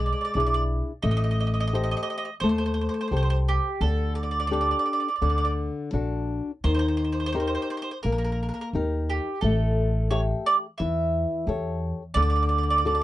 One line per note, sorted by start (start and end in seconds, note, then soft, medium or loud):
0.00 0.12 B1 medium
0.00 0.34 G#3 medium
0.06 0.11 D5 soft
0.13 0.18 D5 soft
0.21 0.24 D5 soft
0.21 0.31 D5 medium
0.34 0.80 B1 medium
0.34 0.91 D4 soft
0.34 0.91 E4 soft
0.34 0.91 G#4 soft
0.34 0.39 D5 soft
0.40 0.45 D5 medium
0.47 0.53 D5 medium
0.54 0.61 D5 medium
1.02 1.93 A1 loud
1.02 1.70 A3 medium
1.02 1.10 D#5 medium
1.11 1.16 D#5 medium
1.17 1.23 D#5 medium
1.24 1.30 D#5 medium
1.31 1.39 D#5 medium
1.40 1.46 D#5 medium
1.47 1.53 D#5 medium
1.54 1.59 D#5 medium
1.60 1.66 D#5 medium
1.67 1.74 D#5 medium
1.73 2.28 G4 soft
1.73 2.29 A4 soft
1.73 2.29 C5 medium
1.73 1.82 D#5 medium
1.84 1.90 D#5 medium
1.91 1.96 D#5 medium
1.97 2.02 D#5 medium
2.03 2.09 D#5 medium
2.10 2.16 D#5 medium
2.18 2.24 D#5 medium
2.25 2.33 D#5 medium
2.40 2.87 D#2 medium
2.40 3.10 A3 medium
2.40 2.48 C5 medium
2.49 2.56 C5 medium
2.58 2.64 C5 medium
2.66 2.72 C5 medium
2.74 2.80 C5 medium
2.81 2.87 C5 soft
2.89 2.93 C5 medium
2.94 3.00 C5 soft
3.01 3.06 C5 medium
3.08 3.56 C2 medium
3.08 3.67 G4 soft
3.08 3.14 C5 soft
3.12 3.67 A4 soft
3.12 3.68 C5 soft
3.17 3.21 C5 medium
3.23 3.29 C5 medium
3.30 3.37 C5 medium
3.49 3.79 G4 medium
3.81 4.72 D2 loud
3.81 4.50 D3 medium
3.81 4.14 A4 medium
4.15 4.22 D5 medium
4.23 4.30 D5 soft
4.31 4.38 D5 medium
4.40 4.45 D5 medium
4.47 5.07 D4 soft
4.47 4.52 D5 medium
4.51 5.08 G4 soft
4.51 5.08 A4 soft
4.51 4.60 D5 medium
4.61 4.67 D5 medium
4.71 4.76 D5 soft
4.79 4.84 D5 medium
4.86 4.91 D5 soft
4.93 4.98 D5 medium
5.00 5.05 D5 soft
5.08 5.13 D5 soft
5.16 5.21 D5 soft
5.22 5.68 D2 medium
5.22 5.91 D3 medium
5.22 5.28 D5 medium
5.30 5.35 D5 soft
5.38 5.43 D5 medium
5.45 5.50 D5 medium
5.93 6.39 A#1 medium
5.93 6.50 D4 soft
5.93 6.50 F#4 soft
5.93 6.51 A4 soft
6.64 7.55 D#2 medium
6.64 7.32 D#3 medium
6.64 6.72 C5 medium
6.74 6.78 C5 medium
6.79 6.87 C5 medium
6.88 6.95 C5 medium
6.97 7.03 C5 medium
7.04 7.10 C5 soft
7.12 7.18 C5 medium
7.20 7.25 C5 soft
7.26 7.31 C5 medium
7.32 7.90 D#4 soft
7.32 7.90 G4 soft
7.32 7.91 A#4 soft
7.32 7.39 C5 medium
7.40 7.46 C5 medium
7.47 7.53 C5 medium
7.55 7.61 C5 medium
7.62 7.69 C5 medium
7.70 7.76 C5 medium
7.77 7.81 C5 medium
7.82 7.90 C5 medium
7.91 7.98 C5 medium
8.03 8.49 A#1 medium
8.03 8.72 A#3 medium
8.03 8.10 A#4 medium
8.12 8.17 A#4 soft
8.18 8.23 A#4 medium
8.24 8.31 A#4 medium
8.32 8.40 A#4 soft
8.43 8.48 A#4 soft
8.49 8.52 A#4 medium
8.54 8.60 A#4 soft
8.61 8.68 A#4 medium
8.73 9.18 D#2 medium
8.73 9.29 D#4 soft
8.73 9.29 G4 soft
8.73 9.29 A#4 soft
9.10 9.41 G4 medium
9.41 10.31 A1 loud
9.41 10.10 A3 medium
9.41 10.06 A4 medium
10.11 10.65 G4 soft
10.11 10.65 A4 soft
10.11 10.20 C#5 medium
10.11 10.66 E5 soft
10.46 10.55 D5 medium
10.78 11.24 E2 medium
10.78 11.45 E3 medium
10.78 11.77 E5 medium
11.47 11.91 E2 medium
11.47 12.01 G4 soft
11.47 12.02 A4 soft
11.47 12.02 C#5 soft
12.14 13.03 D2 loud
12.14 12.82 D3 medium
12.14 12.21 D5 loud
12.22 12.29 D5 medium
12.30 12.34 D5 medium
12.36 12.41 D5 medium
12.43 12.48 D5 medium
12.49 12.57 D5 medium
12.58 12.62 D5 medium
12.63 12.69 D5 soft
12.70 12.77 D5 medium
12.78 12.85 D5 medium
12.85 13.03 D4 soft
12.85 13.03 F#4 soft
12.85 13.03 A4 soft
12.85 12.94 D5 medium
12.95 13.00 D5 medium